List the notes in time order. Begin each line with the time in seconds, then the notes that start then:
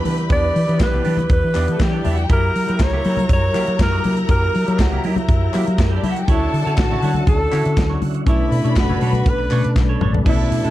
Already playing: E3 D4 E4 F#4 G4 B4 D5 G5 B5
0.04 E3 B3 D4 G4, open hi-hat, high conga, low conga
0.18 muted clean electric guitar stroke, closed hi-hat
0.29 E2 E3 B3 D4 E4 G4 D5, kick, closed hi-hat, muted conga
0.54 E3, muted clean electric guitar stroke, open hi-hat, muted conga
0.67 E3 B3 D4 E4 G4 C#5, closed hi-hat
0.75 D5
0.80 B1 B4, kick, snare, clap, closed hi-hat, muted conga
0.92 B3 D4 G4, low conga
1.04 E3 B3 D4 G4, open hi-hat, muted conga, high conga
1.17 muted clean electric guitar stroke, closed hi-hat, high conga, low conga
1.29 E2 B4, muted clean electric guitar stroke, kick, closed hi-hat, muted conga
1.43 E3, muted clean electric guitar stroke
1.54 E2 E3 B3 D4 E4 G4 D5, clap, open hi-hat
1.68 E3 A3 A4, muted clean electric guitar stroke, closed hi-hat
1.79 E3 B3 G4 B4, muted clean electric guitar stroke, kick, snare, clap, closed hi-hat, muted conga, high conga
1.89 C#4 G4 C#5
1.93 B3 D4
1.97 D4 D5
2.04 E2 B3 D4 E4 G4 E5, open hi-hat, high conga, low conga
2.13 F#4 F#5
2.18 G4, muted clean electric guitar stroke, closed hi-hat
2.22 G5
2.29 F#2 F#3 A#3 E4 G4 A#4 A#5, kick, closed hi-hat, muted conga
2.56 F#3, open hi-hat
2.67 F#3 A#3 E4 G4 A#4, closed hi-hat
2.79 C#2 C#5, muted clean electric guitar stroke, kick, snare, clap, closed hi-hat, muted conga
2.93 A#3 E4 G4, low conga
3.04 F#3 A#3 E4 G4, open hi-hat, high conga
3.17 muted clean electric guitar stroke, closed hi-hat, high conga, low conga
3.29 F#2 C#5, muted clean electric guitar stroke, kick, closed hi-hat
3.42 muted clean electric guitar stroke
3.53 F#3 A#3 E4 G4 A#4, clap, open hi-hat, muted conga
3.67 F#3, muted clean electric guitar stroke, closed hi-hat
3.79 F#2 A#4, kick, snare, clap, closed hi-hat, muted conga, high conga
3.92 A#3 E4 G4
4.03 F#3 A#3 E4 G4, open hi-hat, muted conga, high conga, low conga
4.17 muted clean electric guitar stroke, closed hi-hat
4.28 F#2 F#3 A#3 E4 G4 A#4, kick, closed hi-hat
4.53 F#3, muted clean electric guitar stroke, open hi-hat, muted conga
4.66 F#3 A#3 E4 G4 C#5, closed hi-hat
4.78 C#2 F#4, muted clean electric guitar stroke, kick, snare, clap, closed hi-hat, muted conga
4.92 A#3 E4 G4, low conga
5.04 F#3 A#3 E4 G4, open hi-hat, muted conga, high conga
5.16 muted clean electric guitar stroke, closed hi-hat, high conga, low conga
5.29 F#2, muted clean electric guitar stroke, kick, closed hi-hat, muted conga
5.42 muted clean electric guitar stroke
5.52 F#3 A#3 E4 G4 A#4, clap, open hi-hat, muted conga
5.67 F#3, muted clean electric guitar stroke, closed hi-hat
5.78 F#2, muted clean electric guitar stroke, kick, snare, clap, closed hi-hat, high conga
5.92 A#3 E4 G4 D5
5.96 D4
6.03 F#3 A#3 E4 G4 E5, open hi-hat, muted conga, high conga, low conga
6.10 F#4 F#5
6.16 G4 G5, muted clean electric guitar stroke, closed hi-hat
6.27 D2 D3 C#4 E4 F#4 A4 C#5 A5, kick, closed hi-hat
6.53 D3, muted clean electric guitar stroke, open hi-hat
6.65 D3 C#4 E4 F#4 C#5, closed hi-hat
6.78 A1 F#4, muted clean electric guitar stroke, kick, snare, clap, closed hi-hat
6.91 E4 F#4 C#5, low conga
7.02 D3 E4 F#4 C#5, open hi-hat, muted conga, high conga
7.14 muted clean electric guitar stroke, closed hi-hat, high conga, low conga
7.27 D2 A4, muted clean electric guitar stroke, kick, closed hi-hat, muted conga
7.41 muted clean electric guitar stroke
7.52 D3 C#4 E4 F#4 C#5, clap, open hi-hat, muted conga
7.65 D3, muted clean electric guitar stroke, closed hi-hat
7.76 D2, muted clean electric guitar stroke, kick, snare, clap, closed hi-hat, muted conga, high conga
7.90 E4 F#4 C#5
8.02 D3, open hi-hat, muted conga, high conga, low conga
8.15 muted clean electric guitar stroke, closed hi-hat
8.25 B1 B2 D3 A3 B3 C#4 D4 A4 B4 C#5 B5, kick, closed hi-hat
8.29 E4
8.51 B2, muted clean electric guitar stroke, open hi-hat, muted conga
8.63 B2 A3 C#4 D4 A4 C#5, closed hi-hat
8.76 F#1 F#4, muted clean electric guitar stroke, kick, snare, clap, closed hi-hat
8.89 D4 A4 C#5, low conga
9.01 B2 D4 A4 C#5, open hi-hat, muted conga, high conga
9.13 closed hi-hat, high conga, low conga
9.25 B1 B4, muted clean electric guitar stroke, kick, closed hi-hat
9.38 muted clean electric guitar stroke
9.50 B2 A3 C#4 D4 A4 C#5, clap, open hi-hat
9.64 B2, muted clean electric guitar stroke, closed hi-hat
9.76 B1, muted clean electric guitar stroke, kick, snare, clap, high conga
9.89 D4 A4 C#5
10.01 A1 D4 A4 C#5, mid tom, muted conga, high conga, low conga
10.14 muted clean electric guitar stroke, floor tom
10.24 B1 B2 D3 A3 B3 C#4 D4 E4 A4 A5, kick, crash, muted conga
10.29 E4
10.51 B2, muted clean electric guitar stroke, open hi-hat
10.63 B2 A3 C#4 D4 E4 A4, closed hi-hat